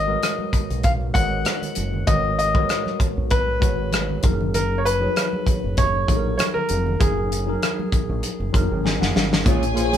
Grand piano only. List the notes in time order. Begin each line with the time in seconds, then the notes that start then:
Already playing: D#5
0.84 F5
1.14 F#5
2.07 D#5
2.39 D#5
3.31 B4
4.55 A#4
4.78 C#5
4.85 B4
5.78 C#5
6.38 C#5
6.54 A#4
7.00 G#4